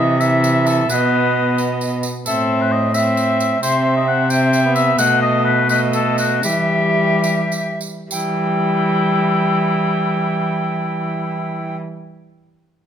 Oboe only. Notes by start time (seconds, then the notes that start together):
Already playing: D#5
0.20 E5
0.67 A4
0.90 B4
2.26 A4
2.62 B4
2.72 D#5
2.94 E5
3.62 C5
3.97 D#5
4.08 F#5
4.30 G5
4.75 E5
4.98 F#5
5.21 D#5
5.45 B4
5.70 B4
5.94 A4
6.19 F#4
6.44 G4
8.12 E4